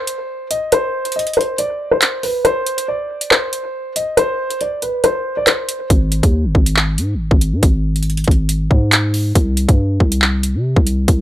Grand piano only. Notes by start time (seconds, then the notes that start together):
Already playing: C5
0.51 D#5
0.72 C5
1.16 D#5
1.37 C5
1.59 D5
1.91 C5
2.23 B4
2.45 C5
2.88 D5
3.31 C5
3.96 D#5
4.17 C5
4.61 D5
4.82 B4
5.04 C5
5.37 D5
5.47 C5